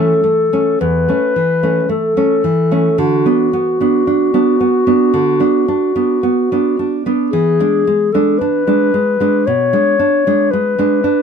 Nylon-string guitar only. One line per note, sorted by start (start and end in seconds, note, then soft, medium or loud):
0.00 0.12 E3 soft
0.00 0.21 A3 soft
0.00 0.22 C#4 soft
0.24 0.52 A3 soft
0.53 0.78 A3 soft
0.53 0.78 C#4 soft
0.81 1.08 E2 soft
1.08 1.33 A3 soft
1.08 1.34 C#4 soft
1.36 1.79 E3 soft
1.63 1.87 A3 soft
1.63 1.88 C#4 soft
1.89 2.16 A3 soft
2.17 2.42 A3 soft
2.17 2.42 C#4 soft
2.44 2.88 E3 soft
2.71 2.96 A3 soft
2.71 2.96 C#4 soft
2.98 3.25 D3 soft
3.26 3.51 B3 soft
3.26 3.51 D4 soft
3.53 3.79 B3 soft
3.81 4.05 B3 soft
3.81 4.05 D4 soft
4.07 4.33 D4 soft
4.34 4.58 B3 soft
4.34 4.58 D4 soft
4.61 4.86 B3 soft
4.87 5.11 B3 soft
4.87 5.12 D4 soft
5.14 5.40 D3 soft
5.40 5.65 B3 soft
5.40 5.65 D4 soft
5.68 5.94 D4 soft
5.96 6.21 B3 soft
5.96 6.20 D4 soft
6.23 6.51 B3 soft
6.52 6.76 B3 soft
6.52 6.76 D4 soft
6.79 7.05 D4 soft
7.06 7.30 B3 soft
7.06 7.30 D4 soft
7.33 7.59 E3 soft
7.60 7.84 G#3 soft
7.60 7.84 D4 soft
7.87 8.13 G#3 soft
8.14 8.38 G#3 soft
8.14 8.38 D4 soft
8.41 8.67 D4 soft
8.67 8.91 G#3 soft
8.67 8.91 D4 soft
8.94 9.19 G#3 soft
9.20 9.44 G#3 soft
9.20 9.44 D4 soft
9.47 9.72 B2 soft
9.73 9.97 G#3 soft
9.73 9.97 D4 soft
9.99 10.26 D4 soft
10.27 10.50 G#3 soft
10.27 10.50 D4 soft
10.53 10.77 G#3 soft
10.79 11.02 G#3 soft
10.79 11.02 D4 soft
11.04 11.22 D4 soft